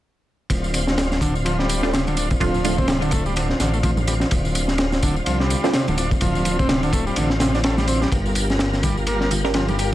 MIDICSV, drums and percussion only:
0, 0, Header, 1, 2, 480
1, 0, Start_track
1, 0, Tempo, 476190
1, 507, Time_signature, 4, 2, 24, 8
1, 10024, End_track
2, 0, Start_track
2, 0, Title_t, "Drums"
2, 503, Note_on_c, 9, 36, 95
2, 506, Note_on_c, 9, 51, 92
2, 507, Note_on_c, 9, 54, 45
2, 603, Note_off_c, 9, 36, 0
2, 607, Note_off_c, 9, 51, 0
2, 608, Note_off_c, 9, 54, 0
2, 645, Note_on_c, 9, 54, 32
2, 743, Note_on_c, 9, 51, 63
2, 746, Note_off_c, 9, 54, 0
2, 746, Note_on_c, 9, 54, 74
2, 844, Note_off_c, 9, 51, 0
2, 847, Note_off_c, 9, 54, 0
2, 881, Note_on_c, 9, 38, 46
2, 887, Note_on_c, 9, 54, 31
2, 982, Note_off_c, 9, 38, 0
2, 986, Note_on_c, 9, 38, 103
2, 986, Note_on_c, 9, 51, 75
2, 987, Note_off_c, 9, 54, 0
2, 988, Note_on_c, 9, 54, 43
2, 1086, Note_off_c, 9, 51, 0
2, 1087, Note_off_c, 9, 38, 0
2, 1089, Note_off_c, 9, 54, 0
2, 1123, Note_on_c, 9, 38, 49
2, 1125, Note_on_c, 9, 54, 30
2, 1220, Note_on_c, 9, 36, 91
2, 1224, Note_off_c, 9, 38, 0
2, 1225, Note_off_c, 9, 54, 0
2, 1225, Note_on_c, 9, 54, 74
2, 1232, Note_on_c, 9, 51, 65
2, 1321, Note_off_c, 9, 36, 0
2, 1326, Note_off_c, 9, 54, 0
2, 1333, Note_off_c, 9, 51, 0
2, 1365, Note_on_c, 9, 54, 32
2, 1466, Note_off_c, 9, 54, 0
2, 1468, Note_on_c, 9, 54, 41
2, 1469, Note_on_c, 9, 51, 83
2, 1569, Note_off_c, 9, 51, 0
2, 1569, Note_off_c, 9, 54, 0
2, 1606, Note_on_c, 9, 38, 38
2, 1706, Note_off_c, 9, 38, 0
2, 1707, Note_on_c, 9, 54, 76
2, 1708, Note_on_c, 9, 51, 67
2, 1808, Note_off_c, 9, 54, 0
2, 1809, Note_off_c, 9, 51, 0
2, 1844, Note_on_c, 9, 38, 50
2, 1945, Note_off_c, 9, 38, 0
2, 1950, Note_on_c, 9, 54, 43
2, 1952, Note_on_c, 9, 38, 120
2, 1960, Note_on_c, 9, 51, 86
2, 2050, Note_off_c, 9, 54, 0
2, 2052, Note_off_c, 9, 38, 0
2, 2061, Note_off_c, 9, 51, 0
2, 2086, Note_on_c, 9, 54, 28
2, 2087, Note_on_c, 9, 63, 76
2, 2095, Note_on_c, 9, 51, 41
2, 2185, Note_off_c, 9, 54, 0
2, 2185, Note_on_c, 9, 54, 70
2, 2186, Note_off_c, 9, 51, 0
2, 2186, Note_on_c, 9, 51, 61
2, 2188, Note_off_c, 9, 63, 0
2, 2285, Note_off_c, 9, 54, 0
2, 2287, Note_off_c, 9, 51, 0
2, 2323, Note_on_c, 9, 54, 32
2, 2328, Note_on_c, 9, 36, 100
2, 2423, Note_off_c, 9, 36, 0
2, 2423, Note_on_c, 9, 36, 107
2, 2424, Note_off_c, 9, 54, 0
2, 2426, Note_on_c, 9, 54, 43
2, 2427, Note_on_c, 9, 51, 81
2, 2524, Note_off_c, 9, 36, 0
2, 2527, Note_off_c, 9, 54, 0
2, 2528, Note_off_c, 9, 51, 0
2, 2563, Note_on_c, 9, 54, 32
2, 2664, Note_off_c, 9, 54, 0
2, 2665, Note_on_c, 9, 63, 59
2, 2666, Note_on_c, 9, 54, 77
2, 2669, Note_on_c, 9, 51, 70
2, 2766, Note_off_c, 9, 63, 0
2, 2767, Note_off_c, 9, 54, 0
2, 2770, Note_off_c, 9, 51, 0
2, 2805, Note_on_c, 9, 54, 31
2, 2806, Note_on_c, 9, 36, 90
2, 2900, Note_on_c, 9, 51, 82
2, 2904, Note_on_c, 9, 38, 120
2, 2906, Note_off_c, 9, 36, 0
2, 2906, Note_off_c, 9, 54, 0
2, 2906, Note_on_c, 9, 54, 43
2, 3001, Note_off_c, 9, 51, 0
2, 3004, Note_off_c, 9, 38, 0
2, 3007, Note_off_c, 9, 54, 0
2, 3043, Note_on_c, 9, 54, 30
2, 3045, Note_on_c, 9, 51, 44
2, 3135, Note_off_c, 9, 51, 0
2, 3135, Note_on_c, 9, 51, 61
2, 3143, Note_off_c, 9, 54, 0
2, 3143, Note_on_c, 9, 54, 76
2, 3151, Note_on_c, 9, 36, 102
2, 3236, Note_off_c, 9, 51, 0
2, 3244, Note_off_c, 9, 54, 0
2, 3252, Note_off_c, 9, 36, 0
2, 3283, Note_on_c, 9, 54, 30
2, 3384, Note_off_c, 9, 54, 0
2, 3387, Note_on_c, 9, 54, 43
2, 3393, Note_on_c, 9, 51, 86
2, 3487, Note_off_c, 9, 54, 0
2, 3494, Note_off_c, 9, 51, 0
2, 3523, Note_on_c, 9, 38, 39
2, 3623, Note_off_c, 9, 38, 0
2, 3627, Note_on_c, 9, 38, 46
2, 3627, Note_on_c, 9, 54, 78
2, 3629, Note_on_c, 9, 51, 63
2, 3727, Note_off_c, 9, 54, 0
2, 3728, Note_off_c, 9, 38, 0
2, 3730, Note_off_c, 9, 51, 0
2, 3765, Note_on_c, 9, 54, 32
2, 3864, Note_on_c, 9, 36, 105
2, 3864, Note_on_c, 9, 51, 69
2, 3865, Note_off_c, 9, 54, 0
2, 3865, Note_on_c, 9, 54, 42
2, 3965, Note_off_c, 9, 36, 0
2, 3965, Note_off_c, 9, 51, 0
2, 3966, Note_off_c, 9, 54, 0
2, 4003, Note_on_c, 9, 63, 87
2, 4004, Note_on_c, 9, 54, 30
2, 4104, Note_off_c, 9, 63, 0
2, 4105, Note_off_c, 9, 54, 0
2, 4107, Note_on_c, 9, 51, 63
2, 4107, Note_on_c, 9, 54, 72
2, 4208, Note_off_c, 9, 51, 0
2, 4208, Note_off_c, 9, 54, 0
2, 4235, Note_on_c, 9, 38, 41
2, 4247, Note_on_c, 9, 54, 33
2, 4336, Note_off_c, 9, 38, 0
2, 4344, Note_on_c, 9, 51, 88
2, 4347, Note_off_c, 9, 54, 0
2, 4348, Note_on_c, 9, 54, 43
2, 4350, Note_on_c, 9, 36, 112
2, 4445, Note_off_c, 9, 51, 0
2, 4449, Note_off_c, 9, 54, 0
2, 4451, Note_off_c, 9, 36, 0
2, 4485, Note_on_c, 9, 54, 32
2, 4585, Note_off_c, 9, 54, 0
2, 4587, Note_on_c, 9, 51, 60
2, 4587, Note_on_c, 9, 54, 75
2, 4687, Note_off_c, 9, 54, 0
2, 4688, Note_off_c, 9, 51, 0
2, 4716, Note_on_c, 9, 38, 46
2, 4725, Note_on_c, 9, 54, 30
2, 4817, Note_off_c, 9, 38, 0
2, 4818, Note_on_c, 9, 51, 74
2, 4826, Note_off_c, 9, 54, 0
2, 4826, Note_on_c, 9, 38, 107
2, 4826, Note_on_c, 9, 54, 41
2, 4919, Note_off_c, 9, 51, 0
2, 4927, Note_off_c, 9, 38, 0
2, 4927, Note_off_c, 9, 54, 0
2, 4962, Note_on_c, 9, 54, 29
2, 4963, Note_on_c, 9, 38, 53
2, 5063, Note_off_c, 9, 38, 0
2, 5063, Note_off_c, 9, 54, 0
2, 5065, Note_on_c, 9, 54, 70
2, 5067, Note_on_c, 9, 36, 90
2, 5067, Note_on_c, 9, 51, 72
2, 5166, Note_off_c, 9, 54, 0
2, 5168, Note_off_c, 9, 36, 0
2, 5168, Note_off_c, 9, 51, 0
2, 5205, Note_on_c, 9, 54, 30
2, 5303, Note_on_c, 9, 51, 82
2, 5306, Note_off_c, 9, 54, 0
2, 5308, Note_on_c, 9, 54, 40
2, 5404, Note_off_c, 9, 51, 0
2, 5409, Note_off_c, 9, 54, 0
2, 5445, Note_on_c, 9, 38, 35
2, 5546, Note_off_c, 9, 38, 0
2, 5547, Note_on_c, 9, 51, 64
2, 5547, Note_on_c, 9, 54, 76
2, 5648, Note_off_c, 9, 51, 0
2, 5648, Note_off_c, 9, 54, 0
2, 5683, Note_on_c, 9, 38, 56
2, 5685, Note_on_c, 9, 54, 32
2, 5780, Note_off_c, 9, 38, 0
2, 5780, Note_on_c, 9, 38, 112
2, 5780, Note_on_c, 9, 51, 76
2, 5786, Note_off_c, 9, 54, 0
2, 5787, Note_on_c, 9, 54, 40
2, 5881, Note_off_c, 9, 38, 0
2, 5881, Note_off_c, 9, 51, 0
2, 5888, Note_off_c, 9, 54, 0
2, 5923, Note_on_c, 9, 63, 85
2, 5924, Note_on_c, 9, 54, 30
2, 5927, Note_on_c, 9, 51, 45
2, 6023, Note_off_c, 9, 51, 0
2, 6023, Note_on_c, 9, 51, 66
2, 6024, Note_off_c, 9, 54, 0
2, 6024, Note_off_c, 9, 63, 0
2, 6026, Note_on_c, 9, 54, 71
2, 6124, Note_off_c, 9, 51, 0
2, 6127, Note_off_c, 9, 54, 0
2, 6163, Note_on_c, 9, 36, 100
2, 6165, Note_on_c, 9, 54, 31
2, 6257, Note_on_c, 9, 51, 89
2, 6263, Note_off_c, 9, 36, 0
2, 6265, Note_off_c, 9, 54, 0
2, 6265, Note_on_c, 9, 36, 95
2, 6265, Note_on_c, 9, 54, 43
2, 6358, Note_off_c, 9, 51, 0
2, 6365, Note_off_c, 9, 54, 0
2, 6366, Note_off_c, 9, 36, 0
2, 6403, Note_on_c, 9, 54, 31
2, 6502, Note_on_c, 9, 51, 66
2, 6504, Note_off_c, 9, 54, 0
2, 6507, Note_on_c, 9, 54, 70
2, 6510, Note_on_c, 9, 63, 56
2, 6603, Note_off_c, 9, 51, 0
2, 6608, Note_off_c, 9, 54, 0
2, 6611, Note_off_c, 9, 63, 0
2, 6644, Note_on_c, 9, 54, 30
2, 6646, Note_on_c, 9, 36, 86
2, 6743, Note_on_c, 9, 38, 104
2, 6744, Note_on_c, 9, 51, 92
2, 6745, Note_off_c, 9, 54, 0
2, 6747, Note_off_c, 9, 36, 0
2, 6748, Note_on_c, 9, 54, 40
2, 6844, Note_off_c, 9, 38, 0
2, 6845, Note_off_c, 9, 51, 0
2, 6848, Note_off_c, 9, 54, 0
2, 6884, Note_on_c, 9, 51, 46
2, 6886, Note_on_c, 9, 54, 28
2, 6982, Note_on_c, 9, 36, 95
2, 6984, Note_off_c, 9, 51, 0
2, 6984, Note_on_c, 9, 51, 65
2, 6987, Note_off_c, 9, 54, 0
2, 6988, Note_on_c, 9, 54, 73
2, 7083, Note_off_c, 9, 36, 0
2, 7085, Note_off_c, 9, 51, 0
2, 7088, Note_off_c, 9, 54, 0
2, 7125, Note_on_c, 9, 54, 29
2, 7219, Note_on_c, 9, 51, 85
2, 7226, Note_off_c, 9, 54, 0
2, 7229, Note_on_c, 9, 54, 40
2, 7319, Note_off_c, 9, 51, 0
2, 7330, Note_off_c, 9, 54, 0
2, 7359, Note_on_c, 9, 38, 47
2, 7459, Note_off_c, 9, 38, 0
2, 7459, Note_on_c, 9, 38, 93
2, 7460, Note_on_c, 9, 51, 80
2, 7468, Note_on_c, 9, 54, 73
2, 7560, Note_off_c, 9, 38, 0
2, 7560, Note_off_c, 9, 51, 0
2, 7569, Note_off_c, 9, 54, 0
2, 7598, Note_on_c, 9, 38, 38
2, 7606, Note_on_c, 9, 54, 29
2, 7697, Note_on_c, 9, 51, 83
2, 7699, Note_off_c, 9, 38, 0
2, 7706, Note_on_c, 9, 38, 123
2, 7707, Note_off_c, 9, 54, 0
2, 7708, Note_on_c, 9, 54, 41
2, 7798, Note_off_c, 9, 51, 0
2, 7806, Note_off_c, 9, 38, 0
2, 7809, Note_off_c, 9, 54, 0
2, 7838, Note_on_c, 9, 63, 76
2, 7842, Note_on_c, 9, 38, 47
2, 7844, Note_on_c, 9, 54, 30
2, 7938, Note_on_c, 9, 51, 70
2, 7939, Note_off_c, 9, 63, 0
2, 7943, Note_off_c, 9, 38, 0
2, 7945, Note_off_c, 9, 54, 0
2, 7945, Note_on_c, 9, 54, 67
2, 8039, Note_off_c, 9, 51, 0
2, 8045, Note_off_c, 9, 54, 0
2, 8083, Note_on_c, 9, 38, 50
2, 8085, Note_on_c, 9, 54, 30
2, 8182, Note_on_c, 9, 36, 110
2, 8184, Note_off_c, 9, 38, 0
2, 8185, Note_off_c, 9, 54, 0
2, 8185, Note_on_c, 9, 54, 40
2, 8186, Note_on_c, 9, 51, 81
2, 8283, Note_off_c, 9, 36, 0
2, 8286, Note_off_c, 9, 51, 0
2, 8286, Note_off_c, 9, 54, 0
2, 8323, Note_on_c, 9, 54, 28
2, 8419, Note_on_c, 9, 51, 65
2, 8424, Note_off_c, 9, 54, 0
2, 8425, Note_on_c, 9, 54, 71
2, 8519, Note_off_c, 9, 51, 0
2, 8525, Note_off_c, 9, 54, 0
2, 8563, Note_on_c, 9, 54, 29
2, 8570, Note_on_c, 9, 38, 51
2, 8660, Note_off_c, 9, 38, 0
2, 8660, Note_on_c, 9, 38, 122
2, 8664, Note_off_c, 9, 54, 0
2, 8664, Note_on_c, 9, 54, 39
2, 8672, Note_on_c, 9, 51, 91
2, 8761, Note_off_c, 9, 38, 0
2, 8765, Note_off_c, 9, 54, 0
2, 8772, Note_off_c, 9, 51, 0
2, 8803, Note_on_c, 9, 38, 46
2, 8804, Note_on_c, 9, 54, 28
2, 8900, Note_on_c, 9, 51, 72
2, 8904, Note_off_c, 9, 38, 0
2, 8904, Note_off_c, 9, 54, 0
2, 8905, Note_on_c, 9, 54, 71
2, 8906, Note_on_c, 9, 36, 91
2, 9001, Note_off_c, 9, 51, 0
2, 9006, Note_off_c, 9, 36, 0
2, 9006, Note_off_c, 9, 54, 0
2, 9045, Note_on_c, 9, 54, 28
2, 9139, Note_on_c, 9, 51, 88
2, 9146, Note_off_c, 9, 54, 0
2, 9147, Note_on_c, 9, 54, 37
2, 9240, Note_off_c, 9, 51, 0
2, 9248, Note_off_c, 9, 54, 0
2, 9280, Note_on_c, 9, 38, 38
2, 9381, Note_off_c, 9, 38, 0
2, 9382, Note_on_c, 9, 51, 67
2, 9386, Note_on_c, 9, 54, 70
2, 9390, Note_on_c, 9, 64, 75
2, 9483, Note_off_c, 9, 51, 0
2, 9487, Note_off_c, 9, 54, 0
2, 9491, Note_off_c, 9, 64, 0
2, 9521, Note_on_c, 9, 38, 49
2, 9615, Note_on_c, 9, 51, 94
2, 9621, Note_off_c, 9, 38, 0
2, 9622, Note_on_c, 9, 38, 111
2, 9626, Note_on_c, 9, 54, 40
2, 9716, Note_off_c, 9, 51, 0
2, 9723, Note_off_c, 9, 38, 0
2, 9727, Note_off_c, 9, 54, 0
2, 9761, Note_on_c, 9, 51, 42
2, 9765, Note_on_c, 9, 54, 27
2, 9765, Note_on_c, 9, 63, 84
2, 9862, Note_off_c, 9, 51, 0
2, 9866, Note_off_c, 9, 54, 0
2, 9866, Note_off_c, 9, 63, 0
2, 9866, Note_on_c, 9, 54, 64
2, 9867, Note_on_c, 9, 51, 69
2, 9967, Note_off_c, 9, 54, 0
2, 9968, Note_off_c, 9, 51, 0
2, 10024, End_track
0, 0, End_of_file